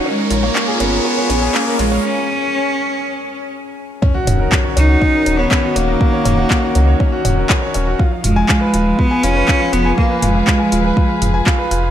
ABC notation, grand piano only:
X:1
M:4/4
L:1/16
Q:1/4=121
K:Ebm
V:1 name="Grand piano"
D B D d D A D B D d D A D B D d | z16 | D G D B D d D G D B D d D G D B | D d D G D B D d D G D B D d D G |
F f F a F c F f F a F c F f F a | F c F f F a F c F f F a F c F f |]